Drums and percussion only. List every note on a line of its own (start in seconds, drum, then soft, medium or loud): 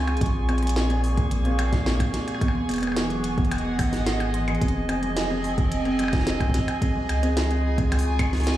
0.08 closed hi-hat soft
0.08 percussion blips medium
0.17 closed hi-hat soft
0.21 kick loud
0.21 closed hi-hat medium
0.26 closed hi-hat soft
0.49 closed hi-hat soft
0.49 percussion blips medium
0.58 closed hi-hat medium
0.63 closed hi-hat medium
0.67 closed hi-hat medium
0.69 closed hi-hat medium
0.76 snare loud
0.90 closed hi-hat soft
1.04 open hi-hat medium
1.17 kick loud
1.17 closed hi-hat medium
1.31 closed hi-hat medium
1.45 closed hi-hat soft
1.59 closed hi-hat medium
1.59 percussion blips medium
1.73 kick loud
1.73 snare medium
1.73 closed hi-hat medium
1.86 snare loud
2.00 kick medium
2.00 closed hi-hat medium
2.00 percussion blips medium
2.14 snare medium
2.14 closed hi-hat medium
2.28 closed hi-hat medium
2.28 percussion blips soft
2.35 percussion blips soft
2.41 kick loud
2.41 closed hi-hat medium
2.41 percussion blips soft
2.48 percussion blips soft
2.69 closed hi-hat medium
2.69 percussion blips soft
2.71 closed hi-hat medium
2.74 closed hi-hat soft
2.74 percussion blips soft
2.76 closed hi-hat soft
2.78 closed hi-hat soft
2.78 percussion blips soft
2.81 closed hi-hat soft
2.83 closed hi-hat medium
2.83 percussion blips soft
2.87 percussion blips soft
2.92 percussion blips soft
2.96 snare loud
2.96 closed hi-hat medium
3.10 closed hi-hat soft
3.24 closed hi-hat medium
3.38 kick loud
3.38 closed hi-hat soft
3.45 closed hi-hat soft
3.51 closed hi-hat medium
3.51 percussion blips medium
3.58 closed hi-hat soft
3.79 kick medium
3.79 closed hi-hat medium
3.79 open hi-hat medium
3.79 percussion blips medium
3.93 snare medium
3.93 open hi-hat medium
4.06 snare loud
4.06 closed hi-hat medium
4.20 closed hi-hat soft
4.20 percussion blips medium
4.34 closed hi-hat medium
4.48 closed hi-hat soft
4.48 percussion blips medium
4.55 closed hi-hat soft
4.62 kick loud
4.62 closed hi-hat medium
4.68 closed hi-hat soft
4.89 closed hi-hat medium
4.89 percussion blips medium
5.03 closed hi-hat soft
5.17 snare loud
5.17 closed hi-hat medium
5.44 open hi-hat medium
5.58 kick loud
5.58 closed hi-hat medium
5.72 closed hi-hat medium
5.85 closed hi-hat soft
5.99 closed hi-hat medium
5.99 percussion blips soft
6.04 percussion blips soft
6.08 percussion blips medium
6.13 kick loud
6.13 snare medium
6.13 closed hi-hat medium
6.16 snare soft
6.20 snare soft
6.23 snare soft
6.27 snare loud
6.27 closed hi-hat medium
6.30 snare soft
6.34 snare soft
6.37 kick medium
6.37 snare soft
6.37 closed hi-hat soft
6.37 percussion blips medium
6.50 kick medium
6.54 snare medium
6.54 closed hi-hat medium
6.59 kick medium
6.68 closed hi-hat medium
6.68 percussion blips medium
6.82 kick loud
6.82 closed hi-hat medium
7.09 closed hi-hat medium
7.09 percussion blips medium
7.23 closed hi-hat medium
7.37 snare loud
7.37 closed hi-hat medium
7.51 closed hi-hat soft
7.78 kick loud
7.78 closed hi-hat soft
7.92 closed hi-hat medium
7.92 percussion blips medium
7.99 open hi-hat medium
8.19 kick medium
8.19 closed hi-hat medium
8.19 percussion blips medium
8.33 snare medium
8.33 open hi-hat soft
8.36 snare soft
8.36 open hi-hat soft
8.40 open hi-hat soft
8.43 snare loud
8.43 closed hi-hat medium
8.43 open hi-hat medium
8.54 snare soft
8.54 closed hi-hat soft